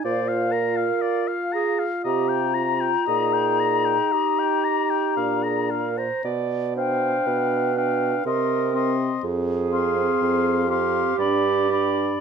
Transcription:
<<
  \new Staff \with { instrumentName = "Flute" } { \time 3/4 \key bes \mixolydian \tempo 4 = 59 f''4. r8 bes''4~ | bes''2~ bes''8 r8 | \key g \phrygian r8 g''4 g''8 c'''8 c'''8 | r8 c'''4 c'''8 b''8 b''8 | }
  \new Staff \with { instrumentName = "Oboe" } { \time 3/4 \key bes \mixolydian d''16 f''16 bes''16 f''16 d''16 f''16 bes''16 f''16 ees''16 g''16 bes''16 g''16 | ees''16 g''16 bes''16 g''16 ees''16 g''16 bes''16 g''16 f''16 bes''16 f''16 bes''16 | \key g \phrygian r8 f''4 f''8 ees''8 ees''8 | r8 f''4 f''8 d''8 d''8 | }
  \new Staff \with { instrumentName = "Clarinet" } { \time 3/4 \key bes \mixolydian c''8 bes'4 aes'16 r16 g'8 f'8 | aes'4 g'4~ g'16 aes'16 bes'16 c''16 | \key g \phrygian d''8 c''8 b'4 bes'8. r16 | aes'4. g'4. | }
  \new Staff \with { instrumentName = "French horn" } { \time 3/4 \key bes \mixolydian f'2~ f'8 r8 | ees'2 d'8 r8 | \key g \phrygian r8 d'4 d'8 c'8 c'8 | r8 c'4 c'8 d'8 d'8 | }
  \new Staff \with { instrumentName = "Bassoon" } { \clef bass \time 3/4 \key bes \mixolydian bes,4 r4 c4 | bes,4 r4 bes,4 | \key g \phrygian b,4 b,4 c4 | f,4 f,4 g,4 | }
>>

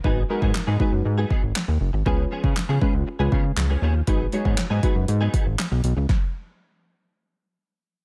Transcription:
<<
  \new Staff \with { instrumentName = "Synth stab" } { \time 4/4 \key gis \dorian \tempo 4 = 119 <gis dis' fis' b'>16 r16 <gis dis' fis' ais'>8 r8 <gis dis' fis' b'>4 r4. | <gis cis' eis' b'>8. r8. <gis cis' eis' b'>8 r16 <gis cis' eis' b'>4 r8. | <gis dis' fis' b'>16 r16 <gis dis' fis' cis''>8 r8 <gis dis' fis' b'>4 r4. | r1 | }
  \new Staff \with { instrumentName = "Clean electric guitar" } { \time 4/4 \key gis \dorian <fis b dis' gis'>16 r16 <fis b dis' gis'>16 <fis b dis' gis'>16 r16 <fis b dis' gis'>16 <fis b dis' gis'>16 r8 <fis b dis' gis'>16 <fis b dis' gis'>16 r4 r16 | <eis b cis' gis'>16 r16 <eis b cis' gis'>16 <eis b cis' gis'>16 r16 <eis b cis' gis'>16 <eis b cis' gis'>16 r8 <eis b cis' gis'>16 <eis b cis' gis'>16 r8 <eis b cis' gis'>16 <eis b cis' gis'>16 r16 | <fis b dis' gis'>16 r16 <fis b dis' gis'>16 <fis b dis' gis'>16 r16 <fis b dis' gis'>16 <fis b dis' gis'>16 r8 <fis b dis' gis'>16 <fis b dis' gis'>16 r4 r16 | r1 | }
  \new Staff \with { instrumentName = "Analog synth bass" } { \clef bass \time 4/4 \key gis \dorian gis,,8 r16 gis,16 r16 gis,16 r16 fis,16 gis,8 r16 gis,,16 r16 dis,16 fis,,16 gis,,16 | cis,8 r16 cis16 r16 cis16 r16 cis,16 r16 cis,16 cis8 cis,8 dis,8 | gis,,8 r16 gis,16 r16 gis,16 r16 fis,16 gis,8 r16 gis,,16 r16 b,,16 b,,16 cis,16 | r1 | }
  \new DrumStaff \with { instrumentName = "Drums" } \drummode { \time 4/4 bd8. bd16 <hc sn>8 bd8 r8 bd8 <hc sn>4 | bd8. bd16 <hc sn>8 bd8 r8 bd8 <hc sn>4 | <hh bd>8 hh16 bd16 <hc hh sn>8 <hh bd>8 hh8 <hh bd>8 <hc hh sn>8 hh8 | <bd sn>4 r4 r4 r4 | }
>>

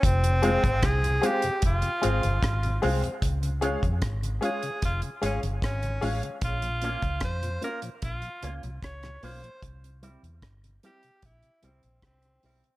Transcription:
<<
  \new Staff \with { instrumentName = "Grand piano" } { \time 4/4 \key f \minor \tempo 4 = 75 r8 <aes' c'' f''>16 r8. <aes' c'' f''>16 r8. <aes' c'' f''>16 <c'' f''>16 r8 <aes' c'' f''>16 <c'' f''>16 | r8 <aes' des'' f''>16 r8. <aes' des'' f''>16 r8. <aes' des'' f''>16 <des'' f''>16 r8 <aes' des'' f''>16 <des'' f''>16 | r1 | r1 | }
  \new Staff \with { instrumentName = "Tenor saxophone" } { \time 4/4 \key f \minor c'4 aes'8 g'8 f'4. r8 | r4. aes'8 f'8 des'8 des'8. r16 | f'4 c''8 bes'8 f'8 r8 des''8 c''8 | r4. g'8 e'8 c'8 c'8. r16 | }
  \new Staff \with { instrumentName = "Clean electric guitar" } { \time 4/4 \key f \minor r8 <aes c' f'>8 r8 <aes c' f'>8 r8 <aes c' f'>8 r8 <aes c' f'>8 | r8 <aes des' f'>8 r8 <aes des' f'>8 r8 <aes des' f'>8 r8 <aes des' f'>8 | r8 <bes des' f'>8 r8 <bes des' f'>8 r8 <bes des' f'>8 r8 <bes des' f'>8 | r8 <g c' e'>8 r8 <g c' e'>8 r8 <g c' e'>8 r8 <g c' e'>8 | }
  \new Staff \with { instrumentName = "Tonewheel organ" } { \time 4/4 \key f \minor r8 <aes c' f'>8 r8 <aes c' f'>8 r8 <aes c' f'>8 r8 <aes c' f'>8 | r8 <aes des' f'>8 r8 <aes des' f'>8 r8 <aes des' f'>8 r8 <aes des' f'>8 | r8 <bes des' f'>8 r8 <bes des' f'>8 r8 <bes des' f'>8 r8 <bes des' f'>8 | r8 <g c' e'>8 r8 <g c' e'>8 r8 <g c' e'>8 r8 <g c' e'>8 | }
  \new Staff \with { instrumentName = "Tonewheel organ" } { \clef bass \time 4/4 \key f \minor r16 <f, c>16 r16 <f, c>16 r16 <f, c>16 r16 <f, c>16 r16 <f, c>16 r16 <f, c>16 r16 <f, c>16 r16 <f, c>16 | r16 des16 r16 des16 r16 des16 r16 des16 r16 des16 r16 des16 r16 des16 r16 des16 | r16 <bes, f>16 r16 <bes, f>16 r16 <bes, f>16 r16 <bes, f>16 r16 <bes, f>16 r16 <bes, f>16 r16 <bes, f>16 r16 <bes, f>16 | r16 c16 r16 c16 r16 c16 r16 c16 r16 c16 r16 c16 r16 c16 r16 c16 | }
  \new Staff \with { instrumentName = "Fingered electric bass" } { \clef bass \time 4/4 \key f \minor f,,8. aes,,16 c,8 r8 f,,16 r16 aes,,16 g,,16 aes,,8 c,16 r16 | des,8. f,16 aes,,8 r8 f,,16 r16 aes,,16 g,,16 aes,,8 a,,16 r16 | bes,,8. des,16 f,8 r8 bes,,16 r16 des,16 c,16 des,8 b,,16 r16 | c,8. e,16 r4 bes,,16 r16 c,16 bes,,16 c,8 b,,16 r16 | }
  \new DrumStaff \with { instrumentName = "Drums" } \drummode { \time 4/4 <hh bd>16 hh16 hh16 <hh bd>16 <hh bd ss>16 hh16 hh16 hh16 <hh bd>16 hh16 hh16 hh16 <hh bd ss>16 hh16 hho16 hh16 | <hh bd>16 hh16 hh16 <hh bd>16 <hh bd ss>16 hh16 hh16 hh16 <hh bd>16 hh16 hh16 hh16 <hh bd ss>16 hh16 hho16 hh16 | <hh bd>16 hh16 hh16 <hh bd>16 <hh bd ss>16 hh16 hh16 hh16 <hh bd>16 hh16 hh16 hh16 <hh bd ss>16 <hh ss>16 hho16 hh16 | <hh bd>16 hh16 hh16 hh16 <hh bd ss>16 hh16 hh16 hh16 <hh bd>16 hh16 hh16 hh16 <hh bd ss>16 hh16 hho16 hh16 | }
>>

